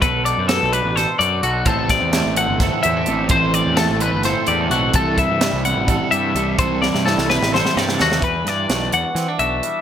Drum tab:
HH |x-x-x-x-x-x-x-|x-x-x-x-x-x-x-|x-x-x-x-x-x-x-|x-x-x-x-x-x-x-|
SD |----o---o-----|--o-o---o-----|----o---o-----|----o---------|
BD |o-------------|o-o-----o-----|o-------------|o-o-----o-----|

HH |x-------------|x-x-x-x-x-x-x-|
SD |--oooooooooooo|--o-o---o-----|
BD |o-------------|o-------------|